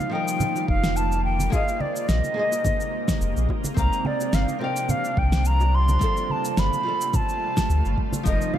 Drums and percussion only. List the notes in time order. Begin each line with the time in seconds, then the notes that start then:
0.00 high conga, cabasa
0.12 high bongo
0.28 cabasa
0.40 high conga, low conga, cabasa
0.56 high bongo, cabasa
0.68 kick
0.84 snare, high conga, cabasa
0.97 cabasa
1.12 high bongo, cabasa
1.39 high conga, cabasa
1.52 kick, high bongo, cabasa
1.68 cabasa
1.80 high conga
1.96 cabasa
2.09 snare, high bongo, cabasa
2.24 high conga, cabasa
2.52 high bongo, cabasa
2.65 kick, high conga, low conga, cabasa
2.80 cabasa
3.08 kick, snare, high bongo, high conga, cabasa
3.21 cabasa
3.37 cabasa
3.49 kick, high bongo
3.64 high conga, cabasa
3.77 kick, cabasa
3.93 cabasa
4.05 high conga
4.21 high bongo, cabasa
4.33 snare, cabasa
4.48 high conga, cabasa
4.61 high bongo
4.77 cabasa
4.89 high conga, low conga, cabasa
5.05 cabasa
5.17 kick, high bongo
5.32 snare, high conga, cabasa
5.45 cabasa
5.60 high bongo, cabasa
5.89 high conga, cabasa
6.01 kick, cabasa
6.17 high bongo, cabasa
6.30 high conga
6.45 cabasa
6.57 snare, high bongo, cabasa
6.73 high conga, cabasa
7.01 cabasa
7.13 kick, high bongo, high conga, low conga, cabasa
7.29 cabasa
7.57 kick, snare, high bongo, high conga, cabasa
7.70 cabasa
7.85 cabasa
7.98 kick
8.12 high bongo, high conga, cabasa
8.26 kick, cabasa
8.41 cabasa
8.54 high bongo, high conga